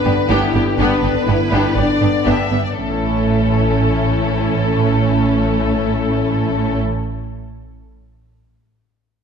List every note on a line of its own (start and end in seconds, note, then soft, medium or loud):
0.00 2.48 D3 soft
0.00 2.48 B3 soft
0.00 0.29 D4 soft
0.00 0.30 B4 medium
0.04 0.13 G1 soft
0.04 0.13 B3 soft
0.04 0.13 D4 soft
0.04 0.12 G4 soft
0.29 0.38 G1 soft
0.29 0.52 B3 medium
0.29 0.52 D4 medium
0.29 0.77 E4 soft
0.29 0.52 G4 medium
0.29 0.78 G4 medium
0.54 0.62 G1 soft
0.54 0.63 B3 soft
0.54 0.62 D4 soft
0.54 0.62 G4 soft
0.77 0.87 G1 soft
0.77 1.02 B3 medium
0.77 1.01 D4 soft
0.77 1.27 D4 soft
0.77 1.01 G4 soft
0.77 1.74 B4 medium
1.02 1.11 G1 soft
1.02 1.12 B3 soft
1.02 1.11 D4 soft
1.02 1.10 G4 soft
1.27 1.36 G1 soft
1.27 1.36 B3 soft
1.27 1.36 D4 soft
1.27 1.77 E4 soft
1.27 1.36 G4 soft
1.52 1.60 G1 soft
1.52 1.75 B3 soft
1.52 1.75 D4 soft
1.52 1.75 G4 soft
1.76 1.85 G1 soft
1.76 1.84 B3 soft
1.76 2.25 D4 soft
1.76 1.85 D4 soft
1.76 1.85 G4 soft
1.76 2.26 D5 medium
2.01 2.09 G1 soft
2.01 2.10 B3 soft
2.01 2.09 D4 soft
2.01 2.09 G4 soft
2.25 2.35 G1 soft
2.25 2.50 B3 soft
2.25 2.51 B3 soft
2.25 2.49 D4 soft
2.25 2.49 G4 soft
2.25 2.64 E5 soft
2.51 2.59 G1 soft
2.51 2.59 B3 soft
2.51 2.59 D4 soft
2.51 2.59 G4 soft
2.65 2.76 D5 soft
2.76 6.78 A1 soft
2.76 6.78 A2 soft
2.76 6.77 E3 soft
2.76 6.77 A3 soft
2.76 6.77 C#4 soft
2.76 6.78 C#4 soft
2.76 6.77 E4 soft
2.76 6.78 A4 soft